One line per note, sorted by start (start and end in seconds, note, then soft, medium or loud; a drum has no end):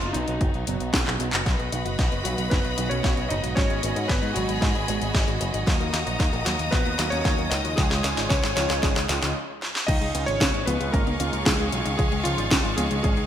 0.00 0.11 F#1 medium
0.00 1.42 F#3 medium
0.00 1.42 B3 medium
0.00 1.42 D#4 medium
0.00 0.15 F4 loud
0.00 closed hi-hat soft
0.13 0.24 B1 medium
0.13 0.26 B2 medium
0.13 0.26 F#3 medium
0.13 0.26 B3 medium
0.13 0.63 D#4 loud
0.13 0.26 D#4 medium
0.13 0.26 F#4 medium
0.13 closed hi-hat medium
0.28 0.37 B1 medium
0.28 0.53 B2 medium
0.28 0.53 F#3 medium
0.28 0.53 B3 medium
0.28 0.53 D#4 medium
0.28 0.53 F#4 medium
0.28 closed hi-hat medium
0.41 0.50 F#1 loud
0.41 kick loud
0.41 closed hi-hat medium
0.54 0.64 B1 medium
0.54 closed hi-hat soft
0.67 0.77 F#1 medium
0.67 0.93 B2 medium
0.67 0.93 F#3 medium
0.67 0.93 B3 medium
0.67 0.93 D#4 medium
0.67 0.93 F#4 loud
0.67 closed hi-hat medium
0.80 0.90 B1 medium
0.80 closed hi-hat soft
0.94 1.03 B1 loud
0.94 kick loud
0.94 snare loud
0.94 closed hi-hat medium
1.07 1.16 B1 medium
1.07 1.17 B2 medium
1.07 1.17 F#3 medium
1.07 1.17 B3 medium
1.07 1.17 D#4 medium
1.07 1.17 G#4 medium
1.07 clap medium
1.07 closed hi-hat soft
1.20 1.29 B1 medium
1.20 1.45 B2 medium
1.20 1.45 F#3 medium
1.20 1.45 B3 medium
1.20 1.45 D#4 medium
1.20 1.45 F#4 medium
1.20 closed hi-hat medium
1.33 1.42 F#1 medium
1.33 clap loud
1.33 closed hi-hat medium
1.46 1.56 B1 loud
1.46 1.51 F#3 medium
1.46 7.74 F#4 medium
1.46 3.55 B4 medium
1.46 7.74 D#5 medium
1.46 3.55 B5 medium
1.46 kick loud
1.46 snare medium
1.46 closed hi-hat medium
1.59 1.69 B1 medium
1.59 1.67 B3 loud
1.59 closed hi-hat soft
1.72 1.82 B1 medium
1.72 1.98 B2 medium
1.72 1.98 F#3 medium
1.72 1.98 B3 medium
1.72 1.80 D#4 medium
1.72 1.98 D#4 medium
1.72 1.98 F#4 medium
1.72 closed hi-hat medium
1.85 1.95 F#1 medium
1.85 1.93 F#4 medium
1.85 closed hi-hat medium
1.99 2.08 B1 loud
1.99 2.03 D#4 medium
1.99 kick loud
1.99 snare soft
1.99 closed hi-hat medium
2.12 2.21 F#1 medium
2.12 2.17 B3 medium
2.12 closed hi-hat soft
2.24 2.34 B1 medium
2.24 2.36 B2 medium
2.24 2.33 F#3 loud
2.24 2.36 F#3 medium
2.24 2.50 F#3 medium
2.24 2.36 B3 medium
2.24 2.36 D#4 medium
2.24 2.49 F#4 medium
2.24 2.36 F#4 medium
2.24 closed hi-hat loud
2.38 2.48 B1 medium
2.38 2.64 B2 medium
2.38 2.64 F#3 medium
2.38 2.50 B3 medium
2.38 2.64 B3 medium
2.38 2.64 D#4 medium
2.38 2.64 F#4 medium
2.38 closed hi-hat medium
2.50 2.61 F#1 loud
2.50 2.89 B3 medium
2.50 2.63 D#4 medium
2.50 2.91 B4 medium
2.50 kick loud
2.50 snare medium
2.50 closed hi-hat medium
2.64 2.74 B1 medium
2.64 2.76 F#4 medium
2.64 closed hi-hat soft
2.78 2.87 B1 medium
2.78 3.27 B2 medium
2.78 3.27 F#3 medium
2.78 3.27 B3 medium
2.78 2.85 D#4 medium
2.78 3.27 D#4 medium
2.78 3.27 F#4 loud
2.78 closed hi-hat loud
2.89 3.00 B1 medium
2.89 2.99 B3 medium
2.89 3.28 C#4 medium
2.89 3.31 C#5 loud
2.89 closed hi-hat soft
3.04 3.14 B1 loud
3.04 3.12 F#3 medium
3.04 kick loud
3.04 snare medium
3.04 closed hi-hat medium
3.17 3.27 B1 medium
3.17 3.22 B3 medium
3.17 closed hi-hat soft
3.29 3.40 F#1 medium
3.29 3.80 G#2 medium
3.29 3.80 G#3 medium
3.29 3.80 B3 medium
3.29 3.38 D#4 medium
3.29 3.80 D#4 medium
3.29 3.55 D#4 medium
3.29 3.80 F#4 medium
3.29 3.57 D#5 loud
3.29 closed hi-hat medium
3.43 3.53 B1 medium
3.43 3.48 F#4 medium
3.43 closed hi-hat medium
3.55 3.66 G#1 loud
3.55 3.61 F#3 medium
3.55 4.06 C#4 medium
3.55 4.10 C#5 loud
3.55 5.65 G#5 medium
3.55 5.65 B5 medium
3.55 kick loud
3.55 snare medium
3.55 closed hi-hat medium
3.70 3.79 G#1 medium
3.70 3.78 G#3 loud
3.70 closed hi-hat soft
3.83 3.92 G#1 medium
3.83 4.09 G#2 medium
3.83 4.09 G#3 medium
3.83 3.91 B3 medium
3.83 4.09 B3 medium
3.83 4.09 D#4 medium
3.83 4.09 F#4 medium
3.83 closed hi-hat loud
3.96 4.06 G#2 medium
3.96 4.04 D#4 medium
3.96 closed hi-hat medium
4.08 4.19 G#1 medium
4.08 4.14 B3 medium
4.08 4.34 B3 medium
4.08 4.33 B4 medium
4.08 kick loud
4.08 snare medium
4.08 closed hi-hat medium
4.22 4.32 G#2 medium
4.22 4.27 G#3 medium
4.22 closed hi-hat soft
4.34 4.45 G#1 medium
4.34 4.47 G#2 medium
4.34 4.43 F#3 loud
4.34 4.60 F#3 medium
4.34 4.47 G#3 medium
4.34 4.47 B3 medium
4.34 4.47 D#4 medium
4.34 4.62 F#4 medium
4.34 4.47 F#4 medium
4.34 closed hi-hat loud
4.48 4.58 G#1 medium
4.48 4.74 G#2 medium
4.48 4.60 G#3 medium
4.48 4.74 G#3 medium
4.48 4.74 B3 medium
4.48 4.74 D#4 medium
4.48 4.74 F#4 medium
4.48 closed hi-hat medium
4.61 4.71 G#2 loud
4.61 5.37 G#3 medium
4.61 4.74 B3 medium
4.61 5.36 G#4 medium
4.61 kick loud
4.61 snare medium
4.61 closed hi-hat medium
4.75 4.85 G#1 medium
4.75 4.87 D#4 medium
4.75 closed hi-hat soft
4.88 4.98 G#1 medium
4.88 5.38 G#2 medium
4.88 5.38 G#3 medium
4.88 4.96 B3 medium
4.88 5.38 B3 medium
4.88 5.38 D#4 medium
4.88 5.38 F#4 loud
4.88 closed hi-hat loud
5.01 5.11 G#1 medium
5.01 5.09 G#3 medium
5.01 closed hi-hat soft
5.14 5.24 G#1 loud
5.14 5.22 F#3 medium
5.14 kick loud
5.14 snare medium
5.14 closed hi-hat medium
5.28 5.37 G#1 medium
5.28 5.32 G#3 medium
5.28 closed hi-hat soft
5.41 5.50 F#1 medium
5.41 5.90 F#3 medium
5.41 5.90 A#3 medium
5.41 5.49 B3 medium
5.41 5.90 D#4 medium
5.41 5.90 F#4 medium
5.41 closed hi-hat medium
5.54 5.63 G#1 medium
5.54 5.59 D#4 medium
5.54 closed hi-hat medium
5.67 5.77 D#2 loud
5.67 5.72 F#3 medium
5.67 7.76 A#5 medium
5.67 9.32 D#6 medium
5.67 kick loud
5.67 snare medium
5.67 closed hi-hat medium
5.80 5.90 D#2 medium
5.80 5.88 A#3 loud
5.80 closed hi-hat soft
5.93 6.03 D#2 medium
5.93 6.19 F#3 medium
5.93 6.19 A#3 medium
5.93 6.01 D#4 medium
5.93 6.19 D#4 medium
5.93 6.19 F#4 medium
5.93 snare medium
5.93 closed hi-hat loud
6.07 6.16 A#1 medium
6.07 6.15 F#4 medium
6.07 closed hi-hat medium
6.20 6.29 D#2 medium
6.20 6.25 D#4 medium
6.20 kick loud
6.20 snare medium
6.20 closed hi-hat medium
6.33 6.42 A#1 medium
6.33 6.38 A#3 medium
6.33 closed hi-hat soft
6.45 6.56 D#2 medium
6.45 6.57 F#3 medium
6.45 6.54 F#3 loud
6.45 6.53 F#3 medium
6.45 6.57 A#3 medium
6.45 6.57 D#4 medium
6.45 6.51 F#4 medium
6.45 6.57 F#4 medium
6.45 snare medium
6.45 closed hi-hat medium
6.59 6.69 D#2 medium
6.59 6.85 F#3 medium
6.59 6.71 A#3 medium
6.59 6.85 A#3 medium
6.59 6.85 D#4 medium
6.59 6.85 F#4 medium
6.59 closed hi-hat medium
6.71 6.82 A#1 loud
6.71 7.10 B3 medium
6.71 6.84 D#4 medium
6.71 7.08 B4 medium
6.71 kick loud
6.71 snare medium
6.71 closed hi-hat medium
6.85 6.95 D#2 medium
6.85 6.97 F#4 medium
6.85 closed hi-hat soft
6.99 7.08 D#2 medium
6.99 7.48 F#3 loud
6.99 7.48 A#3 medium
6.99 7.07 D#4 medium
6.99 7.48 D#4 medium
6.99 7.48 F#4 loud
6.99 snare medium
6.99 closed hi-hat medium
7.10 7.21 D#2 medium
7.10 7.20 A#3 medium
7.10 7.49 C#4 medium
7.10 7.52 C#5 loud
7.10 closed hi-hat medium
7.25 7.35 D#2 loud
7.25 7.33 F#3 medium
7.25 kick loud
7.25 snare medium
7.25 closed hi-hat medium
7.38 7.48 D#2 medium
7.38 7.43 A#3 medium
7.38 closed hi-hat soft
7.50 7.61 C#2 loud
7.50 8.01 C#3 medium
7.50 8.01 G#3 medium
7.50 8.01 C#4 medium
7.50 7.59 D#4 medium
7.50 8.01 D#4 medium
7.50 7.76 D#4 medium
7.50 8.01 F4 medium
7.50 7.78 D#5 loud
7.50 snare medium
7.50 closed hi-hat medium
7.64 7.74 D#2 medium
7.64 7.69 F#4 medium
7.64 closed hi-hat medium
7.76 7.87 C#2 loud
7.76 7.82 F3 medium
7.76 8.27 G#3 medium
7.76 9.34 F4 medium
7.76 8.31 G#4 loud
7.76 9.34 C#5 medium
7.76 9.34 G#5 medium
7.76 kick loud
7.76 snare medium
7.76 closed hi-hat medium
7.91 8.00 C#2 medium
7.91 7.99 G#3 loud
7.91 snare medium
7.91 closed hi-hat soft
8.04 8.13 C#2 medium
8.04 8.30 C#3 medium
8.04 8.30 G#3 medium
8.04 8.12 C#4 medium
8.04 8.30 C#4 medium
8.04 8.30 D#4 medium
8.04 8.30 F4 loud
8.04 snare medium
8.04 closed hi-hat medium
8.17 8.27 G#1 medium
8.17 8.25 D#4 medium
8.17 snare medium
8.17 closed hi-hat medium
8.29 8.40 C#2 medium
8.29 8.35 C#4 medium
8.29 8.55 C#4 medium
8.29 8.54 C#5 loud
8.29 kick loud
8.29 snare loud
8.29 closed hi-hat medium
8.43 8.53 G#1 medium
8.43 8.48 G#3 medium
8.43 snare medium
8.43 closed hi-hat soft
8.55 8.66 C#2 medium
8.55 8.68 C#3 medium
8.55 8.64 F3 loud
8.55 8.68 G#3 medium
8.55 8.68 C#4 medium
8.55 8.82 C#4 medium
8.55 8.68 D#4 medium
8.55 8.68 F4 medium
8.55 8.83 C#5 loud
8.55 snare loud
8.55 closed hi-hat medium
8.70 8.79 C#2 medium
8.70 8.95 C#3 medium
8.70 8.82 G#3 medium
8.70 8.95 G#3 medium
8.70 8.95 C#4 medium
8.70 8.95 D#4 medium
8.70 8.95 F4 medium
8.70 snare medium
8.70 closed hi-hat medium
8.82 8.92 G#1 loud
8.82 9.33 G#3 medium
8.82 8.95 C#4 medium
8.82 9.31 G#4 medium
8.82 kick loud
8.82 snare loud
8.82 closed hi-hat medium
8.96 9.06 C#2 medium
8.96 9.08 D#4 medium
8.96 snare medium
8.96 closed hi-hat soft
9.09 9.19 C#2 medium
9.09 9.35 C#3 loud
9.09 9.35 G#3 medium
9.09 9.35 C#4 medium
9.09 9.35 D#4 medium
9.09 9.17 F4 medium
9.09 9.35 F4 loud
9.09 snare loud
9.09 closed hi-hat medium
9.22 9.32 C#2 medium
9.22 9.34 F4 medium
9.22 snare medium
9.22 closed hi-hat soft
9.62 snare medium
9.75 snare medium
9.87 9.98 C#2 loud
9.87 9.93 F3 medium
9.87 10.25 D#4 medium
9.87 13.27 G#4 medium
9.87 10.28 D#5 loud
9.87 13.27 D#5 medium
9.87 13.27 F5 medium
9.87 13.27 C#6 medium
9.87 kick loud
9.87 closed hi-hat medium
9.87 crash loud
10.01 10.11 C#2 medium
10.01 10.09 G#3 loud
10.01 closed hi-hat soft
10.14 10.24 C#2 medium
10.14 10.40 C#3 medium
10.14 10.40 G#3 medium
10.14 10.22 C#4 medium
10.14 10.40 C#4 medium
10.14 10.40 D#4 medium
10.14 10.40 F4 medium
10.14 closed hi-hat loud
10.26 10.37 G#1 medium
10.26 10.65 C#4 medium
10.26 10.35 D#4 medium
10.26 10.64 C#5 loud
10.26 closed hi-hat medium
10.41 10.50 C#2 loud
10.41 10.45 C#4 medium
10.41 kick loud
10.41 snare loud
10.41 closed hi-hat medium
10.54 10.63 G#1 medium
10.54 10.59 G#3 medium
10.54 closed hi-hat soft
10.66 10.77 C#2 medium
10.66 10.78 C#3 medium
10.66 10.75 F3 loud
10.66 10.78 G#3 medium
10.66 10.92 B3 medium
10.66 10.78 C#4 medium
10.66 10.78 D#4 medium
10.66 10.78 F4 medium
10.66 10.94 B4 loud
10.66 closed hi-hat loud
10.66 high conga medium
10.80 10.90 C#2 medium
10.80 11.06 C#3 medium
10.80 10.92 G#3 medium
10.80 11.06 G#3 medium
10.80 11.06 C#4 medium
10.80 11.06 D#4 medium
10.80 11.06 F4 medium
10.80 closed hi-hat medium
10.92 11.03 G#1 loud
10.92 11.43 A#3 medium
10.92 11.05 C#4 medium
10.92 11.42 A#4 loud
10.92 kick loud
10.92 closed hi-hat medium
11.06 11.16 C#2 medium
11.06 11.18 D#4 medium
11.06 closed hi-hat soft
11.06 high conga medium
11.20 11.29 C#2 medium
11.20 11.45 C#3 medium
11.20 11.45 G#3 medium
11.20 11.45 C#4 medium
11.20 11.28 C#4 medium
11.20 11.45 D#4 medium
11.20 11.45 F4 loud
11.20 closed hi-hat loud
11.33 11.42 C#2 medium
11.33 11.41 G#3 medium
11.33 closed hi-hat medium
11.45 11.56 C#2 loud
11.45 11.54 F3 medium
11.45 11.96 G#3 medium
11.45 11.95 G#4 medium
11.45 kick loud
11.45 snare loud
11.45 closed hi-hat medium
11.59 11.69 C#2 medium
11.59 11.69 C#3 medium
11.59 11.64 G#3 medium
11.59 11.69 G#3 medium
11.59 11.69 C#4 medium
11.59 11.69 D#4 medium
11.59 11.69 G#4 medium
11.59 closed hi-hat soft
11.72 11.82 B1 loud
11.72 11.98 C#3 medium
11.72 11.98 G#3 medium
11.72 11.80 C#4 medium
11.72 11.98 C#4 medium
11.72 11.98 D#4 medium
11.72 11.98 F4 medium
11.72 closed hi-hat medium
11.85 11.95 C#2 medium
11.85 11.90 D#4 medium
11.85 closed hi-hat medium
11.97 12.08 C#2 loud
11.97 12.03 F3 medium
11.97 12.24 G#3 medium
11.97 12.25 G#4 loud
11.97 kick loud
11.97 closed hi-hat medium
12.12 12.21 C#2 medium
12.12 12.20 G#3 loud
12.12 closed hi-hat soft
12.24 12.35 C#2 loud
12.24 12.51 C#3 medium
12.24 12.75 F3 medium
12.24 12.51 G#3 medium
12.24 12.33 C#4 medium
12.24 12.51 C#4 medium
12.24 12.51 D#4 medium
12.24 12.79 F4 loud
12.24 12.51 F4 loud
12.24 closed hi-hat loud
12.38 12.48 G#1 medium
12.38 12.46 D#4 medium
12.38 closed hi-hat medium
12.51 12.61 C#2 loud
12.51 12.56 C#4 medium
12.51 kick loud
12.51 snare loud
12.51 closed hi-hat medium
12.65 12.74 G#1 medium
12.65 12.69 G#3 medium
12.65 closed hi-hat soft
12.76 12.87 C#2 medium
12.76 12.89 C#3 medium
12.76 12.85 F3 loud
12.76 12.89 G#3 medium
12.76 13.03 G#3 medium
12.76 12.89 C#4 medium
12.76 12.89 D#4 medium
12.76 12.89 F4 medium
12.76 13.01 G#4 loud
12.76 closed hi-hat loud
12.76 high conga medium
12.91 13.00 C#2 medium
12.91 13.16 C#3 medium
12.91 13.03 G#3 medium
12.91 13.16 G#3 medium
12.91 13.16 C#4 medium
12.91 13.16 D#4 medium
12.91 13.16 F4 medium
12.91 closed hi-hat medium
13.03 13.14 G#1 loud
13.03 13.27 G#3 medium
13.03 13.16 C#4 medium
13.03 13.27 G#4 loud
13.03 kick loud
13.03 closed hi-hat medium
13.17 13.27 C#2 medium
13.17 13.27 D#4 medium
13.17 closed hi-hat soft